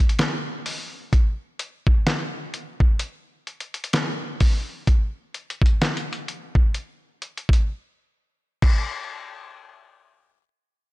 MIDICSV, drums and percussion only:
0, 0, Header, 1, 2, 480
1, 0, Start_track
1, 0, Tempo, 937500
1, 577, Time_signature, 4, 2, 24, 8
1, 5592, End_track
2, 0, Start_track
2, 0, Title_t, "Drums"
2, 48, Note_on_c, 9, 42, 74
2, 96, Note_off_c, 9, 42, 0
2, 96, Note_on_c, 9, 42, 71
2, 98, Note_on_c, 9, 38, 125
2, 147, Note_off_c, 9, 42, 0
2, 149, Note_off_c, 9, 38, 0
2, 337, Note_on_c, 9, 46, 68
2, 388, Note_off_c, 9, 46, 0
2, 577, Note_on_c, 9, 36, 110
2, 577, Note_on_c, 9, 42, 77
2, 628, Note_off_c, 9, 36, 0
2, 629, Note_off_c, 9, 42, 0
2, 816, Note_on_c, 9, 42, 60
2, 867, Note_off_c, 9, 42, 0
2, 956, Note_on_c, 9, 36, 94
2, 1007, Note_off_c, 9, 36, 0
2, 1058, Note_on_c, 9, 38, 107
2, 1058, Note_on_c, 9, 42, 70
2, 1109, Note_off_c, 9, 38, 0
2, 1109, Note_off_c, 9, 42, 0
2, 1299, Note_on_c, 9, 42, 68
2, 1350, Note_off_c, 9, 42, 0
2, 1435, Note_on_c, 9, 36, 97
2, 1486, Note_off_c, 9, 36, 0
2, 1533, Note_on_c, 9, 42, 72
2, 1584, Note_off_c, 9, 42, 0
2, 1777, Note_on_c, 9, 42, 44
2, 1828, Note_off_c, 9, 42, 0
2, 1845, Note_on_c, 9, 42, 51
2, 1897, Note_off_c, 9, 42, 0
2, 1915, Note_on_c, 9, 42, 61
2, 1965, Note_off_c, 9, 42, 0
2, 1965, Note_on_c, 9, 42, 70
2, 2013, Note_off_c, 9, 42, 0
2, 2013, Note_on_c, 9, 42, 70
2, 2016, Note_on_c, 9, 38, 124
2, 2064, Note_off_c, 9, 42, 0
2, 2067, Note_off_c, 9, 38, 0
2, 2255, Note_on_c, 9, 46, 68
2, 2256, Note_on_c, 9, 36, 92
2, 2306, Note_off_c, 9, 46, 0
2, 2307, Note_off_c, 9, 36, 0
2, 2495, Note_on_c, 9, 42, 78
2, 2496, Note_on_c, 9, 36, 104
2, 2546, Note_off_c, 9, 42, 0
2, 2547, Note_off_c, 9, 36, 0
2, 2736, Note_on_c, 9, 42, 51
2, 2787, Note_off_c, 9, 42, 0
2, 2817, Note_on_c, 9, 42, 52
2, 2868, Note_off_c, 9, 42, 0
2, 2875, Note_on_c, 9, 36, 97
2, 2897, Note_on_c, 9, 42, 54
2, 2926, Note_off_c, 9, 36, 0
2, 2948, Note_off_c, 9, 42, 0
2, 2977, Note_on_c, 9, 42, 53
2, 2978, Note_on_c, 9, 38, 109
2, 3029, Note_off_c, 9, 42, 0
2, 3030, Note_off_c, 9, 38, 0
2, 3056, Note_on_c, 9, 42, 54
2, 3107, Note_off_c, 9, 42, 0
2, 3137, Note_on_c, 9, 42, 52
2, 3188, Note_off_c, 9, 42, 0
2, 3217, Note_on_c, 9, 42, 69
2, 3268, Note_off_c, 9, 42, 0
2, 3354, Note_on_c, 9, 36, 95
2, 3406, Note_off_c, 9, 36, 0
2, 3453, Note_on_c, 9, 42, 70
2, 3504, Note_off_c, 9, 42, 0
2, 3696, Note_on_c, 9, 42, 42
2, 3747, Note_off_c, 9, 42, 0
2, 3776, Note_on_c, 9, 42, 54
2, 3827, Note_off_c, 9, 42, 0
2, 3835, Note_on_c, 9, 36, 101
2, 3856, Note_on_c, 9, 42, 71
2, 3886, Note_off_c, 9, 36, 0
2, 3907, Note_off_c, 9, 42, 0
2, 4415, Note_on_c, 9, 49, 85
2, 4416, Note_on_c, 9, 36, 108
2, 4466, Note_off_c, 9, 49, 0
2, 4467, Note_off_c, 9, 36, 0
2, 5592, End_track
0, 0, End_of_file